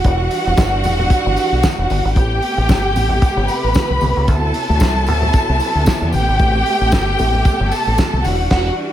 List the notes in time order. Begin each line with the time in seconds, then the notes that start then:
Already playing: E3 G3 D4 F#4 F#5
0.04 E1, kick, closed hi-hat
0.31 open hi-hat, tambourine
0.47 E1
0.57 G1, kick, snare, closed hi-hat, tambourine, high conga
0.84 E1, open hi-hat, tambourine, muted conga, low conga
0.99 low conga
1.10 kick, closed hi-hat, tambourine, muted conga
1.26 G1
1.36 open hi-hat, tambourine, muted conga
1.52 B1
1.63 kick, snare, closed hi-hat, tambourine, high conga
1.79 E1
1.90 G1, open hi-hat, tambourine, high conga
2.05 G#1
2.16 A1 C3 A3 B3 G4 G5, kick, closed hi-hat, tambourine
2.42 open hi-hat
2.58 A1
2.69 G1, kick, snare, closed hi-hat, tambourine, high conga
2.96 A1, open hi-hat, tambourine, muted conga, low conga
3.09 low conga
3.22 kick, closed hi-hat, tambourine, muted conga
3.37 G1
3.48 B4 B5, open hi-hat, tambourine, muted conga
3.64 A1
3.74 kick, snare, closed hi-hat, tambourine, high conga
3.90 C2, high conga
4.01 C2, open hi-hat, tambourine, high conga
4.17 C#2
4.27 D2 C3 F#3 E4 A4 A5, kick, closed hi-hat, tambourine
4.54 open hi-hat, tambourine
4.69 D2
4.80 C2, kick, snare, closed hi-hat, tambourine, high conga
5.07 D2, open hi-hat, tambourine, muted conga, low conga
5.22 low conga
5.33 kick, closed hi-hat, tambourine, muted conga
5.49 C2
5.60 open hi-hat, tambourine
5.75 D2
5.86 kick, snare, closed hi-hat, tambourine, high conga
6.01 E2, high conga
6.12 A1 A3 G4 G5, open hi-hat, tambourine, high conga
6.28 G#1
6.39 A1, kick, closed hi-hat, tambourine
6.66 open hi-hat
6.81 A1
6.92 kick, snare, closed hi-hat, tambourine, high conga
7.18 A1, open hi-hat, tambourine, muted conga, low conga
7.34 low conga
7.45 kick, closed hi-hat, tambourine, muted conga
7.60 G1
7.71 A4 A5, open hi-hat, tambourine
7.87 A1
7.98 kick, snare, closed hi-hat, tambourine, high conga
8.13 C2, high conga
8.24 E1 E3 G3 D4 F#4 F#5, open hi-hat, tambourine, high conga
8.39 D#1
8.50 E1 F#4 F#5, kick, snare, crash